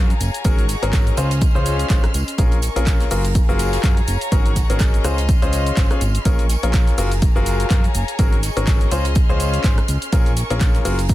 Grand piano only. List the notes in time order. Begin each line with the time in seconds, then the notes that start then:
0.45 C#4 F#4 G#4 A#4
0.83 C#4 F#4 G#4 A#4
1.17 C#4 F4 G#4 C5
1.55 C#4 F4 G#4 C5
1.90 C#4 F4 G#4 C5
2.38 C#4 F4 G#4 A#4
2.76 C#4 F4 G#4 A#4
3.11 F4 F#4 G#4 A#4
3.49 F4 F#4 G#4 A#4
3.83 F4 F#4 G#4 A#4
4.32 C#4 F#4 G#4 A#4
4.70 C#4 F#4 G#4 A#4
5.04 C#4 F4 G#4 C5
5.42 C#4 F4 G#4 C5
5.77 C#4 F4 G#4 C5
5.91 C#4 F4 G#4 C#5
6.25 C#4 F4 G#4 A#4
6.63 C#4 F4 G#4 A#4
6.98 F4 F#4 G#4 A#4
7.36 F4 F#4 G#4 A#4
7.70 F4 F#4
8.19 C#4 F#4 G#4 A#4
8.57 C#4 F#4 G#4 A#4
8.91 C#4 F4 G#4 C5
9.29 C#4 F4 G#4 C5
9.64 C#4 F4 G#4 C5
10.13 C#4 F4 G#4 A#4
10.50 C#4 F4 G#4 A#4
10.85 F4 F#4 G#4 A#4